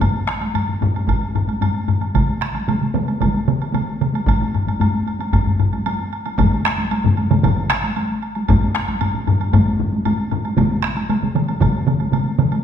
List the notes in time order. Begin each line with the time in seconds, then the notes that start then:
0.00 taiko, taiko low-mid, taiko high, high woodblock
0.28 taiko rim, high woodblock
0.41 taiko high, high woodblock
0.54 taiko low-mid, taiko high, high woodblock
0.69 taiko low-mid
0.81 taiko low-mid, taiko high, high woodblock
0.95 taiko high, high woodblock
1.08 taiko, taiko low-mid, taiko high, high woodblock
1.35 taiko low-mid, high woodblock
1.48 taiko high, high woodblock
1.61 taiko low-mid, taiko high, high woodblock
1.88 taiko low-mid, high woodblock
2.01 taiko high, high woodblock
2.14 taiko, taiko mid, taiko high, high woodblock
2.41 taiko rim, high woodblock
2.54 taiko high, high woodblock
2.68 taiko mid, taiko high, high woodblock
2.81 taiko mid
2.94 taiko mid, taiko high, high woodblock
3.08 taiko high, high woodblock
3.21 taiko, taiko mid, taiko high, high woodblock
3.48 taiko mid, high woodblock
3.62 high woodblock
3.73 taiko mid, taiko high, high woodblock
4.01 taiko mid, high woodblock
4.14 taiko high, high woodblock
4.27 taiko, taiko low-mid, taiko high, high woodblock
4.41 taiko low-mid
4.54 taiko low-mid, high woodblock
4.67 taiko low-mid, taiko high, high woodblock
4.80 taiko low-mid, taiko high, high woodblock
5.07 taiko high, high woodblock
5.20 taiko high, high woodblock
5.33 taiko, taiko low-mid, taiko high, high woodblock
5.47 taiko low-mid
5.60 taiko low-mid, high woodblock
5.73 taiko high, high woodblock
5.86 taiko high, high woodblock
6.13 high woodblock
6.26 taiko high, high woodblock
6.39 taiko, taiko low-mid, taiko mid, taiko high, high woodblock
6.65 taiko rim, high woodblock
6.78 taiko high
6.91 taiko high, high woodblock
7.04 taiko low-mid, taiko mid
7.17 taiko high, high woodblock
7.31 taiko low-mid, taiko mid, taiko high, high woodblock
7.43 taiko, taiko low-mid, taiko mid, taiko high, high woodblock
7.70 taiko rim, high woodblock
7.84 taiko high, high woodblock
7.96 taiko high, high woodblock
8.22 high woodblock
8.35 taiko high, high woodblock
8.48 taiko, taiko low-mid, taiko high, high woodblock
8.74 taiko rim, high woodblock
8.88 taiko high, high woodblock
9.01 taiko low-mid, taiko high, high woodblock
9.14 taiko low-mid
9.27 taiko low-mid, taiko high, high woodblock
9.40 taiko high, high woodblock
9.53 taiko, taiko low-mid, taiko high, high woodblock
9.79 taiko low-mid
9.92 taiko high
10.05 taiko low-mid, taiko high, high woodblock
10.31 taiko low-mid, high woodblock
10.45 taiko high, high woodblock
10.57 taiko, taiko mid, taiko high, high woodblock
10.83 taiko rim, high woodblock
10.97 taiko high, high woodblock
11.09 taiko mid, taiko high, high woodblock
11.23 taiko mid
11.35 taiko mid, taiko high, high woodblock
11.48 taiko high, high woodblock
11.61 taiko, taiko mid, taiko high, high woodblock
11.87 taiko mid, high woodblock
12.00 taiko high, high woodblock
12.12 taiko mid, taiko high, high woodblock
12.39 taiko mid, high woodblock
12.51 taiko high, high woodblock